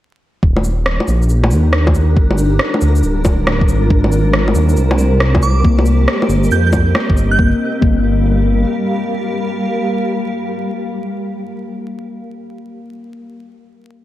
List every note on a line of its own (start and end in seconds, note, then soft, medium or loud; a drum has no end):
0.42 0.99 D#1 loud
0.42 3.87 D4 medium
0.42 2.15 D#4 medium
0.42 2.15 G4 medium
0.42 7.39 A#4 medium
0.42 kick loud
0.57 low bongo medium
0.64 shaker medium
0.86 cross-stick loud
1.00 low bongo soft
1.08 1.53 A#1 medium
1.08 shaker medium
1.22 shaker soft
1.29 shaker soft
1.44 low bongo medium
1.51 2.18 D#2 medium
1.51 shaker medium
1.73 cross-stick loud
1.87 kick loud
1.87 low bongo medium
1.95 shaker medium
2.16 2.59 G1 medium
2.16 3.89 G3 medium
2.16 3.89 F4 medium
2.16 3.89 A#4 medium
2.16 kick loud
2.31 low bongo medium
2.38 shaker medium
2.59 cross-stick loud
2.74 low bongo soft
2.81 3.02 D2 medium
2.81 shaker medium
2.96 shaker soft
3.03 3.68 D1 medium
3.03 shaker soft
3.25 kick loud
3.25 low bongo medium
3.25 shaker medium
3.47 cross-stick loud
3.47 low bongo medium
3.61 kick loud
3.68 4.55 G#1 medium
3.68 shaker medium
3.89 5.63 G#3 medium
3.89 4.89 D4 medium
3.89 7.35 G4 medium
3.89 7.35 A#4 medium
3.89 5.63 C5 loud
3.89 kick loud
4.04 low bongo soft
4.12 shaker medium
4.33 cross-stick loud
4.48 low bongo soft
4.55 4.76 D#2 medium
4.55 shaker medium
4.69 shaker soft
4.77 5.63 C2 medium
4.77 shaker soft
4.91 low bongo medium
4.98 shaker medium
5.20 cross-stick loud
5.35 kick loud
5.35 low bongo medium
5.42 5.66 D6 medium
5.42 shaker medium
5.63 6.07 C2 medium
5.63 6.63 A#3 medium
5.63 7.36 C4 medium
5.63 7.36 D#5 loud
5.63 kick loud
5.79 low bongo soft
5.86 shaker medium
6.08 cross-stick loud
6.22 low bongo soft
6.29 6.50 G1 medium
6.29 shaker medium
6.44 shaker soft
6.51 6.94 F2 medium
6.51 6.61 G6 medium
6.51 shaker soft
6.67 6.71 G6 medium
6.73 kick loud
6.73 low bongo medium
6.73 shaker medium
6.95 cross-stick loud
6.95 low bongo soft
7.10 7.38 G1 loud
7.10 kick loud
7.17 shaker medium
7.31 7.39 G6 medium
7.38 7.53 G1 loud
7.38 11.63 G3 medium
7.38 7.53 A#3 medium
7.38 11.62 G4 medium
7.38 11.62 A#4 medium
7.38 11.62 F5 medium
7.38 kick loud
7.81 8.65 G1 loud
7.81 12.21 A#3 medium
7.81 kick loud